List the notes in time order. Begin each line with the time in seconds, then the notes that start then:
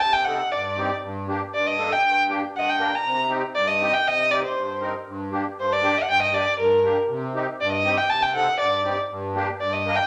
0.00 C3 A5
0.13 G5
0.25 C4 D#4 A4 F#5
0.52 G2 D5
0.77 C4 D#4 G4
1.03 G2
1.28 A#3 D4 G4
1.54 G2 D5
1.67 D#5
1.78 A#3 D4 A4
1.92 G5
2.04 G2
2.28 A#3 D4 G4
2.53 G2 F#5
2.59 D#5
2.63 F#5
2.70 G5
2.79 A#3 D4 A#4
2.95 A#5
3.05 C3
3.29 C4 D#4 G4
3.54 G2 D5
3.67 D#5
3.80 C4 D#4 G4
3.94 G5
4.05 C3 D#5
4.29 C4 D#4 G4 D5
4.44 C5
4.55 G2
4.80 C4 D#4 A#4
5.06 G2
5.31 A#3 D4 G4
5.57 G2 C5
5.73 D5
5.82 A#3 D4 G4
5.98 F#5
6.07 G2 G5
6.22 D#5
6.32 A#3 D4 G4 D5
6.57 G2 A#4
6.83 A#3 D4 G4
7.09 C3
7.34 C4 D#4 G4
7.60 G2 D5
7.72 D#5
7.85 C4 D#4 G4
7.97 G5
8.10 C3 A5
8.23 G5
8.34 C4 D#4 A4 F#5
8.59 G2 D5
8.83 C4 D#4 G4
9.09 G2
9.35 A#3 D4 G4
9.60 G2 D5
9.73 D#5
9.86 A#3 D4 A#4
9.96 G5